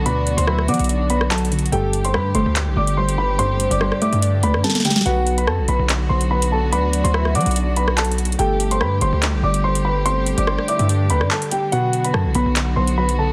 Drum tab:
HH |x-----------x-----x-----------------x--x--x--x--x-----------x-----------x---x---x---x---x---x---|x-----------x-----x-----------------x-----------x-----------------x-----------x-----------------|x-----------x-----x-----------------x-----x-----x-----------x-----------x-----x-----x-----------|x-----------x-----x-----------------x-----------x-----------------x-----------x-----------------|
CP |------------------------------------------------------------------------x-----------------------|------------------------------------------------x-----------------------------------------------|------------------------------------------------------------------------------------------------|------------------------------------------------x-----------------------------------------------|
SD |------------------------r-----r-----------------------------------r-----------------------------|------------------------r-----------------------------------------------------------------------|------------------------r-----r-----------------------------------r-----o--o--o--o--o--o--o--o--|------------------------r-----------------------------------------------------------------------|

HH |x-----------x-----x-----------------x--x--x--x--x-----------x-----------x---x---x---x---x---x---|x-----------x-----x-----------------x-----------x-----------------x-----------x-----------------|x-----------x-----x-----------------x-----x-----x-----------x-----------x-----x-----x-----------|x-----------x-----x-----------------x-----------x-----------------x-----------x-----------------|
CP |------------------------------------------------------------------------x-----------------------|------------------------------------------------x-----------------------------------------------|------------------------------------------------------------------------x-----------------------|------------------------------------------------x-----------------------------------------------|
SD |------------------------r-----r-----------------------------------r-----------------------------|------------------------r-----------------------------------------------------------------------|------------------------r-----r-----------------------------------r-----------------------------|------------------------r-----------------------------------------------------------------------|